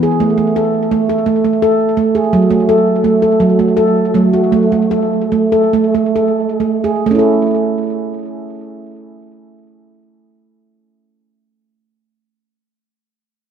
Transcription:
0.00 0.15 E3 medium
0.00 0.21 G#4 medium
0.20 0.36 A3 medium
0.38 0.56 A3 medium
0.56 0.92 A4 medium
0.91 1.09 A3 medium
1.09 1.45 A4 medium
1.26 1.43 A3 medium
1.45 1.62 A3 medium
1.62 1.98 A4 medium
1.97 2.27 A3 medium
2.15 2.33 G#4 medium
2.33 3.23 F#3 loud
2.51 2.68 A3 medium
2.69 3.04 A4 medium
3.04 3.22 A3 medium
3.22 3.59 A4 medium
3.40 4.02 F#3 medium
3.59 3.77 A3 medium
3.77 4.14 A4 medium
4.14 4.47 F#3 medium
4.14 4.33 A3 medium
4.33 4.53 F#4 medium
4.52 4.71 A3 medium
4.72 4.92 A3 medium
4.91 5.32 A4 medium
5.32 5.52 A3 medium
5.52 5.94 A4 medium
5.73 5.93 A3 medium
5.95 6.16 A3 medium
6.16 6.60 A4 medium
6.60 6.99 A3 medium
6.84 7.07 G#4 medium
7.06 11.93 A3 medium
7.11 11.98 C#4 medium
7.11 12.01 E4 medium
7.19 12.06 A4 medium

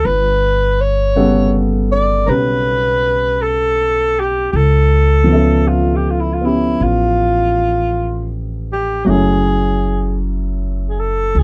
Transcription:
0.05 2.24 G1 medium
0.05 0.83 B4 medium
0.81 1.56 C#5 medium
1.16 4.54 C#3 soft
1.16 4.53 G3 soft
1.16 4.54 B3 soft
1.16 4.54 A4 medium
1.16 4.54 F#5 soft
1.92 2.28 D5 medium
2.26 4.50 B1 medium
2.26 4.53 C#4 soft
2.26 4.54 G4 soft
2.26 2.31 A#4 medium
2.26 3.43 B4 medium
2.26 4.55 B4 soft
3.42 4.21 A4 medium
4.20 4.51 G4 medium
4.52 6.76 C#2 medium
4.52 4.58 G4 medium
4.56 5.69 A4 medium
5.24 9.06 F3 soft
5.24 6.40 B3 soft
5.29 6.41 C#4 soft
5.29 9.10 E5 soft
5.35 9.11 A4 soft
5.67 5.97 F4 medium
5.96 6.12 G4 medium
6.10 6.22 F4 medium
6.21 6.35 E4 medium
6.34 6.47 F4 medium
6.41 9.08 B3 soft
6.41 9.06 C#4 soft
6.41 9.09 G4 soft
6.46 6.85 E4 medium
6.80 9.05 A1 medium
6.80 8.36 F4 medium
8.73 9.07 G4 medium
9.05 11.31 F#1 medium
9.05 11.43 F#3 soft
9.05 11.43 A3 soft
9.05 11.43 C#4 soft
9.05 11.43 E4 soft
9.05 9.11 F#4 soft
9.10 10.23 G#4 medium
10.90 11.01 G#4 soft
11.00 11.40 A4 medium
11.35 11.43 C#2 medium
11.35 11.43 G#4 medium

